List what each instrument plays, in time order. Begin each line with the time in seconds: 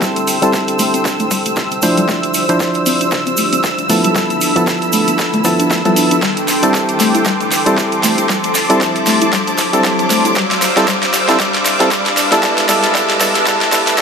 Already playing: synth stab G3 C4 E4 A4, ambient pad D4 G4 C5, analog synth pad A4 G5 C6, string machine E6, riser
0.02 synth arpeggio sound G3, kick, snare, shaker
0.16 closed hi-hat, shaker
0.27 open hi-hat, shaker
0.42 synth stab G3 C4 E4 A4, closed hi-hat, shaker
0.53 kick, snare, shaker
0.68 closed hi-hat, shaker
0.79 analog synth bass A1, synth arpeggio sound A3, open hi-hat, shaker
0.94 synth arpeggio sound C4, closed hi-hat, shaker
1.05 kick, snare, shaker
1.19 analog synth bass A2, synth arpeggio sound A3, closed hi-hat, shaker
1.31 synth arpeggio sound G3, kick, open hi-hat, shaker
1.46 analog synth bass A1, synth arpeggio sound A3, closed hi-hat, shaker
1.56 kick, snare, shaker
1.71 synth arpeggio sound C4, closed hi-hat, shaker
1.82 synth stab F3 D4 E4 C5, synth arpeggio sound A3, open hi-hat, shaker
1.97 synth arpeggio sound G3, closed hi-hat, shaker
2.08 analog synth bass D2, synth arpeggio sound A3, analog synth pad C5 E6, kick, snare, shaker
2.23 closed hi-hat, shaker
2.34 open hi-hat, shaker
2.49 analog synth bass D2, synth stab F3 D4 E4 C5, closed hi-hat, shaker
2.60 kick, snare, shaker
2.74 closed hi-hat, shaker
2.86 analog synth bass D2, synth arpeggio sound C4, open hi-hat, shaker
3.01 synth arpeggio sound D4, closed hi-hat, shaker
3.11 kick, snare, shaker
3.27 analog synth bass D1, synth arpeggio sound C4, closed hi-hat, shaker
3.37 synth arpeggio sound A3, open hi-hat, shaker
3.53 analog synth bass D2, synth arpeggio sound C4, closed hi-hat, shaker
3.64 kick, snare, shaker
3.78 synth arpeggio sound D4, closed hi-hat, shaker
3.89 synth stab F3 B3 E4 A4, synth arpeggio sound A3, analog synth pad A4 B5, open hi-hat, shaker
4.04 synth arpeggio sound G3, closed hi-hat, shaker
4.15 synth arpeggio sound G3, kick, snare, shaker
4.30 closed hi-hat, shaker
4.39 ambient pad B4, open hi-hat, shaker
4.56 synth stab F3 B3 E4 A4, closed hi-hat, shaker
4.67 kick, snare, shaker
4.82 closed hi-hat, shaker
4.92 analog synth bass G1, synth arpeggio sound A3, open hi-hat, shaker
5.07 synth arpeggio sound B3, closed hi-hat, shaker
5.18 kick, snare, shaker
5.33 analog synth bass G2, synth arpeggio sound A3, closed hi-hat, shaker
5.44 synth stab F3 B3 E4 A4, synth arpeggio sound D4, kick, open hi-hat, shaker
5.60 synth arpeggio sound D4, closed hi-hat, shaker
5.71 kick, snare, shaker
5.85 synth stab F3 B3 E4 A4, synth arpeggio sound G3, closed hi-hat, shaker
5.96 analog synth bass G2, synth arpeggio sound D4, open hi-hat, shaker
6.11 synth arpeggio sound D4, closed hi-hat, shaker
6.22 analog synth bass A1, synth arpeggio sound G3, ambient pad D4, analog synth pad G5 C6, string machine D6, kick, snare, shaker
6.37 closed hi-hat, shaker
6.48 snare, open hi-hat, shaker
6.63 synth stab G3 C4 E4 A4, ambient pad C5, closed hi-hat, shaker
6.74 kick, snare, shaker
6.89 closed hi-hat, shaker
7.00 analog synth bass A1, synth arpeggio sound A3, snare, open hi-hat, shaker
7.15 synth arpeggio sound E4, closed hi-hat, shaker
7.25 synth arpeggio sound G3, kick, snare, shaker
7.40 analog synth bass A2, closed hi-hat, shaker
7.52 snare, open hi-hat, shaker
7.66 synth stab G3 C4 E4 A4, closed hi-hat, shaker
7.77 kick, snare, shaker
7.92 closed hi-hat, shaker
8.03 analog synth bass A1, synth arpeggio sound A3, snare, open hi-hat, shaker
8.18 synth arpeggio sound E4, closed hi-hat, shaker
8.29 synth arpeggio sound G3, analog synth pad A5, kick, snare, shaker
8.44 closed hi-hat, shaker
8.55 snare, open hi-hat, shaker
8.69 synth stab G3 C4 E4 A4, closed hi-hat, shaker
8.81 kick, snare, shaker
8.95 closed hi-hat, shaker
9.06 synth arpeggio sound A3, snare, open hi-hat, shaker
9.21 synth arpeggio sound E4, closed hi-hat, shaker
9.33 synth arpeggio sound G3, kick, snare, shaker
9.47 analog synth bass A2, closed hi-hat, shaker
9.58 kick, snare, open hi-hat, shaker
9.73 synth stab G3 C4 E4 A4, closed hi-hat, shaker
9.84 kick, snare, shaker
9.99 closed hi-hat, shaker
10.10 analog synth bass A1, synth arpeggio sound A3, snare, open hi-hat, shaker
10.25 synth arpeggio sound E4, closed hi-hat, shaker
10.35 analog synth bass D2, synth arpeggio sound G3, analog synth pad C5 F5 E6, kick, snare, shaker
10.51 snare, closed hi-hat, shaker
10.60 ambient pad G4, snare, open hi-hat, shaker
10.76 analog synth bass D2, synth stab G3 C4 E4 A4, snare, closed hi-hat, shaker
10.87 synth arpeggio sound G3, kick, snare, shaker
11.03 snare, closed hi-hat, shaker
11.14 analog synth bass D2, snare, open hi-hat, shaker
11.28 synth stab G3 C4 E4 A4, snare, closed hi-hat, shaker
11.40 synth arpeggio sound G3, kick, snare, shaker
11.54 snare, closed hi-hat, shaker
11.65 snare, open hi-hat, shaker
11.80 synth stab G3 C4 E4 A4, snare, closed hi-hat, shaker
11.91 synth arpeggio sound G3, kick, snare, shaker
12.06 snare, closed hi-hat, shaker
12.17 analog synth bass G1, analog synth pad B4 A5 E6, snare, open hi-hat, shaker
12.31 synth stab G3 B3 E4 A4, snare, closed hi-hat, shaker
12.42 synth stab G3 B3 E4 A4, synth arpeggio sound G3, kick, snare, shaker
12.57 snare, closed hi-hat, shaker
12.68 synth stab G3 B3 E4 A4, synth arpeggio sound G3, snare, open hi-hat, shaker
12.76 ambient pad B4
12.83 snare, closed hi-hat, shaker
12.94 synth stab G3 B3 E4 A4, synth arpeggio sound G3, kick, snare, shaker
13.10 snare, closed hi-hat, shaker
13.20 synth stab G3 B3 E4 A4, synth arpeggio sound G3, snare, open hi-hat, shaker
13.35 snare, closed hi-hat, shaker
13.46 synth stab G3 B3 E4 A4, synth arpeggio sound G3, kick, snare, shaker
13.61 analog synth bass G2, snare, closed hi-hat, shaker
13.72 synth stab G3 B3 E4 A4, synth arpeggio sound G3, kick, snare, open hi-hat, shaker
13.87 snare, closed hi-hat, shaker
13.97 synth stab G3 B3 E4, synth arpeggio sound G3, kick, snare, shaker